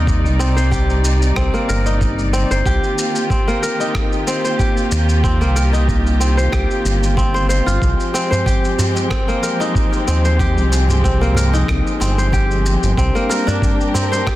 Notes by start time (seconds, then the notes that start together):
Already playing: D#2 C3 G3 A#3 C4 D#4 G4 A#4 D5
0.07 kick, shaker
0.25 C2, shaker
0.39 C4, shaker
0.57 C5, shaker
0.71 G4, kick, shaker
0.90 shaker
1.05 shaker
1.22 shaker
1.36 C2 C4, kick, cross-stick, shaker
1.54 A#3, shaker
1.69 G1 A#4, shaker
1.86 D#4, shaker
2.01 kick, shaker
2.19 shaker
2.33 C4, shaker
2.51 G1 C5, shaker
2.66 C2 D#3 A#3 F4 G4, kick, shaker
2.84 shaker
2.98 shaker
3.16 shaker
3.30 C4, kick, shaker
3.48 A#3, shaker
3.63 A#4, shaker
3.80 D#4, shaker
3.95 kick, cross-stick, shaker
4.13 shaker
4.27 C4, shaker
4.44 C5, shaker
4.59 G4, kick, shaker
4.77 shaker
4.92 D#2, shaker
5.09 shaker
5.24 C4, kick, shaker
5.41 C2 A#3, shaker
5.56 A#4, shaker
5.73 D#4, shaker
5.88 kick, shaker
6.06 shaker
6.20 C4, shaker
6.37 C5, shaker
6.52 C2 G4, kick, cross-stick, shaker
6.71 shaker
6.85 G1, shaker
7.03 shaker
7.17 C4, kick, shaker
7.34 C5, shaker
7.49 C5, shaker
7.66 G1 F4, shaker
7.82 C2 F3 G#3 C4 G4, kick, shaker
8.00 shaker
8.14 C4, darbuka ka, shaker
8.31 C5, darbuka tek, darbuka dum, shaker
8.46 G4, kick, shaker
8.65 shaker
8.79 darbuka dum, shaker
8.96 darbuka tek, shaker
9.10 C4, kick, cross-stick, shaker
9.28 A#3, shaker
9.43 A#4, darbuka ka, shaker
9.60 D#4, darbuka ka, darbuka tek, shaker
9.75 kick, shaker
9.93 darbuka ka, shaker
10.07 D#2 C4, shaker
10.25 C5, shaker
10.39 G4, kick, shaker
10.57 C2, shaker
10.72 darbuka ka, shaker
10.89 darbuka dum, shaker
11.04 C4, kick, shaker
11.21 A#3, shaker
11.35 A#4, darbuka dum, shaker
11.53 D#4, darbuka tek, shaker
11.68 C2, kick, cross-stick, shaker
11.87 shaker
12.00 G1 C4, darbuka tek, shaker
12.18 C5, shaker
12.32 G4, kick, darbuka ka, shaker
12.51 shaker
12.66 shaker
12.83 G1, shaker
12.97 C2 G3 C4 D4 G4 A#4, kick, shaker
13.15 A#3, shaker
13.29 A#4, darbuka ka, shaker
13.47 D4, darbuka tek, darbuka dum, shaker
13.62 kick, shaker
13.81 shaker
13.94 C4, darbuka dum, shaker
14.12 C5, darbuka tek, shaker
14.27 G4, kick, cross-stick, shaker